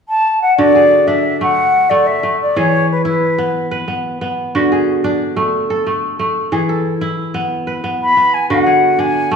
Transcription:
0.09 0.39 A5 loud
0.42 0.57 F#5 medium
0.57 2.61 D3 medium
0.57 2.05 F#4 medium
0.57 1.09 D5 medium
0.75 1.47 G#4 medium
1.07 2.75 D4 medium
1.07 1.40 E5 medium
1.41 1.90 A3 medium
1.41 1.91 F#5 medium
1.90 2.23 A3 medium
1.90 2.08 D5 medium
2.06 2.40 E5 medium
2.23 2.63 A3 medium
2.41 2.59 D5 medium
2.56 4.59 E3 medium
2.56 3.93 G#4 medium
2.56 2.90 C#5 medium
2.91 3.05 B4 medium
3.05 4.62 E4 medium
3.05 3.68 B4 medium
3.38 3.87 B3 medium
3.71 4.94 B4 medium
3.88 4.21 B3 medium
4.21 6.08 B3 medium
4.55 6.57 D3 medium
4.55 6.01 F#4 medium
4.72 5.42 G#4 medium
5.04 6.72 D4 medium
5.36 5.86 A3 medium
5.70 6.58 A4 medium
5.87 6.19 A3 medium
6.19 6.58 A3 medium
6.52 8.54 E3 medium
6.52 7.89 G#4 medium
6.69 8.01 A4 medium
7.01 8.58 E4 medium
7.34 7.83 B3 medium
7.67 8.90 B4 medium
7.84 8.16 B3 medium
8.02 8.35 B5 loud
8.17 9.36 B3 medium
8.34 8.50 G#5 medium
8.50 9.36 D3 medium
8.50 9.36 F#4 medium
8.50 9.01 F#5 medium
8.66 9.36 G#4 medium
8.99 9.36 D4 medium
8.99 9.33 G#5 medium
9.31 9.36 A3 medium
9.31 9.36 A5 medium

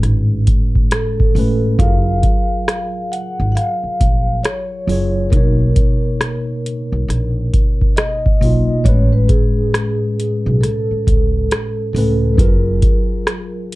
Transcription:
0.00 0.44 G#1 medium
0.00 1.35 A2 medium
0.00 1.81 G#3 medium
0.00 1.38 C#4 medium
0.00 1.82 G#4 medium
0.00 cross-stick soft
0.00 closed hi-hat medium
0.47 kick medium
0.47 closed hi-hat medium
0.76 kick medium
0.91 1.83 A4 medium
0.91 cross-stick loud
0.91 closed hi-hat medium
1.20 kick medium
1.35 1.62 A1 medium
1.35 1.70 A2 medium
1.35 1.71 A3 medium
1.35 1.72 C#4 medium
1.35 open hi-hat soft
1.39 1.73 B4 medium
1.78 2.21 F#1 loud
1.78 3.08 F#3 medium
1.78 3.09 F4 medium
1.78 3.10 G#4 medium
1.78 3.15 F5 loud
1.78 kick loud
1.78 closed hi-hat medium
1.83 3.10 A#4 medium
2.23 kick medium
2.23 closed hi-hat medium
2.68 cross-stick loud
2.68 closed hi-hat medium
3.12 3.51 F#5 loud
3.12 closed hi-hat medium
3.40 3.55 G#1 medium
3.52 4.40 F5 loud
3.52 3.56 F#5 medium
3.57 cross-stick soft
3.57 closed hi-hat medium
3.84 muted upright bass stroke soft
4.01 4.42 A#1 medium
4.01 kick medium
4.01 closed hi-hat medium
4.43 5.35 C#5 medium
4.43 cross-stick loud
4.43 closed hi-hat medium
4.87 5.29 F#1 medium
4.87 5.23 F#3 medium
4.87 5.24 F4 medium
4.87 5.25 G#4 medium
4.87 open hi-hat soft
4.92 5.25 C#5 medium
5.30 5.74 B1 loud
5.30 6.61 B2 medium
5.30 6.62 A#3 medium
5.30 8.04 A#4 medium
5.30 kick loud
5.30 closed hi-hat medium
5.35 6.63 D#4 medium
5.35 6.64 C#5 medium
5.76 kick medium
5.76 closed hi-hat medium
6.21 cross-stick loud
6.21 closed hi-hat medium
6.66 closed hi-hat medium
6.92 7.07 B1 medium
7.08 7.50 A#1 medium
7.08 cross-stick soft
7.08 closed hi-hat medium
7.54 kick medium
7.54 closed hi-hat medium
7.82 kick medium
7.96 8.88 D#5 loud
7.96 cross-stick loud
7.96 closed hi-hat medium
8.26 kick medium
8.41 8.68 B1 medium
8.41 8.76 B2 medium
8.41 8.77 A#3 medium
8.41 8.78 D#4 medium
8.41 open hi-hat soft
8.45 8.79 F4 medium
8.84 9.27 A1 loud
8.84 10.14 A2 medium
8.84 10.15 G#3 medium
8.84 8.95 B3 soft
8.84 9.11 C#5 medium
8.84 kick loud
8.84 closed hi-hat medium
8.89 10.16 B4 medium
8.94 10.19 C#4 medium
9.13 9.20 B4 medium
9.28 10.65 G#4 medium
9.28 kick loud
9.28 closed hi-hat medium
9.74 cross-stick loud
9.74 closed hi-hat medium
10.20 closed hi-hat medium
10.46 10.61 B1 medium
10.61 11.90 A4 medium
10.61 cross-stick soft
10.61 closed hi-hat medium
10.91 muted upright bass stroke soft
11.07 11.48 C#2 medium
11.07 kick medium
11.07 closed hi-hat medium
11.51 cross-stick loud
11.51 closed hi-hat medium
11.93 12.36 C#2 medium
11.93 12.29 A2 medium
11.93 12.30 A3 medium
11.93 12.31 C#4 medium
11.93 12.34 A4 medium
11.93 open hi-hat soft
11.98 12.31 B4 medium
12.34 13.66 F#3 medium
12.34 13.67 F4 medium
12.34 13.75 A#4 medium
12.34 12.39 B4 medium
12.38 12.80 F#1 medium
12.38 13.68 G#4 medium
12.38 13.68 A#4 medium
12.38 kick loud
12.38 closed hi-hat medium
12.82 kick loud
12.82 closed hi-hat medium
13.27 cross-stick loud
13.27 closed hi-hat medium

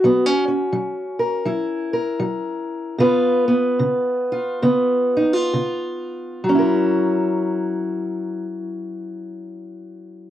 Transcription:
0.00 0.70 F#3 medium
0.00 1.46 F#4 medium
0.04 0.26 B3 medium
0.26 0.47 C#4 soft
0.48 3.00 C#4 soft
0.73 1.42 F#3 medium
1.19 1.92 A#4 soft
1.46 2.16 F#3 medium
1.46 2.96 E4 medium
1.93 2.96 A#4 medium
2.20 2.93 F#3 medium
2.99 3.73 C#3 medium
2.99 3.47 B3 medium
2.99 4.31 F4 medium
2.99 6.42 B4 medium
3.48 4.61 B3 medium
3.79 4.57 C#3 medium
4.32 5.16 F4 medium
4.62 5.45 C#3 medium
4.62 6.46 B3 medium
5.17 5.33 D#4 medium
5.33 6.46 F4 soft
5.53 6.40 C#3 medium
6.44 10.30 F#3 medium
6.49 10.30 C#4 medium
6.55 10.30 E4 medium
6.55 10.30 A#4 medium

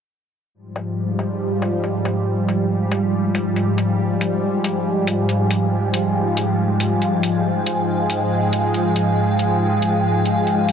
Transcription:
0.54 10.72 G#2 medium
0.54 10.72 F3 medium
0.54 7.41 G3 medium
0.54 10.72 G5 medium
0.60 10.72 F5 medium
0.76 10.72 G#5 medium
0.76 closed hi-hat medium
1.19 closed hi-hat medium
1.62 closed hi-hat medium
1.84 closed hi-hat soft
2.05 closed hi-hat medium
2.48 closed hi-hat medium
2.92 closed hi-hat medium
3.35 closed hi-hat medium
3.56 closed hi-hat soft
3.78 closed hi-hat medium
4.21 closed hi-hat medium
4.64 closed hi-hat medium
5.07 closed hi-hat medium
5.29 closed hi-hat soft
5.51 closed hi-hat medium
5.94 closed hi-hat medium
6.37 closed hi-hat medium
6.80 closed hi-hat medium
7.02 closed hi-hat soft
7.23 closed hi-hat medium
7.45 10.72 G#3 medium
7.66 closed hi-hat medium
8.10 closed hi-hat medium
8.53 closed hi-hat medium
8.74 closed hi-hat soft
8.96 closed hi-hat medium
9.39 closed hi-hat medium
9.82 closed hi-hat medium
10.25 closed hi-hat medium
10.47 closed hi-hat soft
10.69 closed hi-hat medium

